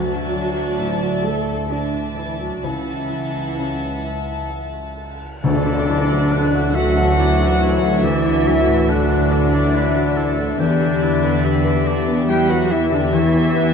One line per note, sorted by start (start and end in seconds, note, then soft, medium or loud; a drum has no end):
0.00 2.60 D2 medium
0.00 2.68 D3 medium
0.00 1.24 F#3 medium
0.00 0.14 D4 soft
0.00 1.24 F#4 medium
0.00 1.66 D5 medium
0.00 2.67 D5 medium
0.00 1.66 E5 medium
0.00 1.66 A5 medium
0.15 2.68 D4 soft
0.36 3.08 F#3 soft
0.58 2.38 E4 soft
0.79 2.64 A2 soft
0.79 2.15 A4 medium
1.02 1.92 F#4 soft
1.24 1.70 A3 medium
1.24 1.70 A4 medium
1.24 1.69 E5 soft
1.47 4.25 A5 soft
1.70 2.17 D3 medium
1.70 2.17 D4 medium
1.70 2.62 D5 soft
1.70 4.03 E5 soft
1.70 2.62 E5 soft
1.70 2.62 A5 medium
1.93 3.79 F#4 soft
2.16 2.40 E3 soft
2.16 2.40 E4 medium
2.16 3.56 A4 soft
2.39 2.64 F#3 soft
2.39 3.32 E4 soft
2.39 2.64 F#4 medium
2.63 5.23 C#2 medium
2.63 5.40 C#2 soft
2.63 5.47 C#3 soft
2.63 4.51 E3 medium
2.63 4.51 E4 medium
2.63 5.23 E5 medium
2.63 5.23 F#5 medium
2.63 5.19 A5 soft
2.87 5.47 C#4 soft
3.10 5.87 F#3 soft
3.34 5.19 E4 soft
3.57 5.44 C#3 soft
3.57 4.95 A4 soft
3.81 4.72 F#4 soft
4.04 4.49 E5 soft
4.27 6.95 A5 soft
4.50 6.73 E5 soft
4.73 6.51 F#4 soft
4.96 6.30 A4 soft
5.20 6.08 E4 soft
5.43 7.99 D2 medium
5.43 10.56 D2 medium
5.43 8.01 D3 medium
5.43 6.71 D3 loud
5.43 6.71 D3 medium
5.43 10.56 E3 medium
5.43 10.56 D4 medium
5.43 6.77 D4 loud
5.43 10.56 F#4 medium
5.43 6.34 A4 medium
5.43 6.77 D5 medium
5.43 6.72 D5 loud
5.43 10.55 E5 medium
5.43 tam-tam medium
5.66 8.22 D4 medium
5.66 6.01 A4 medium
5.88 8.44 F#3 medium
5.88 6.23 E4 medium
6.09 6.45 F#3 medium
6.09 7.79 E4 medium
6.31 7.58 A4 medium
6.31 6.67 A4 medium
6.31 6.77 F#5 medium
6.54 6.88 F#4 medium
6.75 8.03 F#3 medium
6.75 8.02 F#4 loud
6.75 7.10 A4 medium
6.75 7.16 E5 medium
6.75 7.18 E5 medium
6.75 8.02 F#5 medium
6.75 8.04 F#5 loud
6.96 7.31 F#3 medium
6.96 9.50 A5 medium
7.18 7.52 E4 medium
7.18 7.60 D5 medium
7.18 9.29 E5 medium
7.39 9.08 F#4 medium
7.39 7.73 F#4 medium
7.60 7.94 E4 medium
7.60 8.87 A4 medium
7.60 8.06 C#5 medium
7.81 8.65 E4 medium
7.81 8.16 A4 medium
8.02 10.55 D2 medium
8.02 10.62 D3 medium
8.02 8.89 E3 medium
8.02 8.91 E4 loud
8.02 8.48 D5 medium
8.02 8.90 E5 medium
8.02 8.89 E5 medium
8.24 12.14 D4 medium
8.24 8.58 E4 medium
8.45 10.62 F#3 medium
8.45 8.81 F#3 medium
8.45 8.92 E5 medium
8.68 9.02 A2 medium
8.88 10.58 D3 medium
8.88 10.59 D4 loud
8.88 10.15 A4 medium
8.88 9.23 A4 medium
8.88 10.59 D5 medium
8.88 9.34 F#5 medium
9.09 9.94 F#4 medium
9.09 9.44 F#4 medium
9.30 9.65 A4 medium
9.30 9.76 D5 medium
9.30 9.72 E5 medium
9.52 9.87 F#3 medium
9.52 10.62 A5 medium
9.73 10.08 E4 medium
9.73 10.19 B4 medium
9.73 11.64 E5 medium
9.96 10.30 F#4 medium
10.16 10.51 E4 medium
10.16 10.62 A4 medium
10.16 10.59 A4 medium
10.38 11.01 E4 medium
10.38 10.59 A4 medium
10.58 13.09 E2 medium
10.58 13.74 E2 medium
10.58 12.25 D3 loud
10.58 13.11 E3 medium
10.58 13.74 E3 medium
10.58 13.74 B3 medium
10.58 11.99 D4 loud
10.58 13.74 G4 medium
10.58 11.05 G4 medium
10.58 13.74 G4 medium
10.58 11.99 D5 medium
10.58 12.25 D5 loud
10.58 13.74 E5 medium
10.80 13.32 B3 medium
10.80 11.14 G4 medium
11.02 13.54 E4 medium
11.02 11.36 E4 medium
11.02 11.47 B4 medium
11.24 11.57 B3 medium
11.44 11.78 G4 medium
11.44 12.68 B4 medium
11.44 11.88 E5 medium
11.64 11.98 B4 medium
11.64 12.48 E5 medium
11.86 12.20 G4 medium
11.86 12.32 D5 medium
11.86 12.27 G5 medium
12.07 12.41 B3 medium
12.07 13.74 B5 medium
12.28 12.49 G3 medium
12.28 12.62 E4 medium
12.28 12.52 G4 loud
12.28 12.86 B4 medium
12.28 12.51 G5 medium
12.28 13.74 G5 medium
12.28 12.50 G5 medium
12.49 12.70 F#3 medium
12.49 12.73 F#4 medium
12.49 12.83 B4 medium
12.49 13.74 E5 medium
12.49 12.70 F#5 medium
12.49 12.72 F#5 medium
12.70 12.92 E3 medium
12.70 13.04 E4 medium
12.70 12.92 E4 medium
12.70 13.74 B4 medium
12.70 12.93 E5 medium
12.70 12.92 E5 medium
12.91 13.13 D3 medium
12.91 13.15 D4 medium
12.91 13.74 G4 medium
12.91 13.26 G4 medium
12.91 13.14 D5 medium
12.91 13.13 D5 medium
13.12 13.74 E2 medium
13.12 13.74 E3 medium
13.12 13.74 E3 loud
13.12 13.74 E4 loud
13.12 13.59 C#5 medium
13.12 13.74 E5 medium
13.12 13.74 E5 loud
13.34 13.74 B3 medium
13.34 13.69 E4 medium
13.56 13.74 B3 medium
13.56 13.74 B4 medium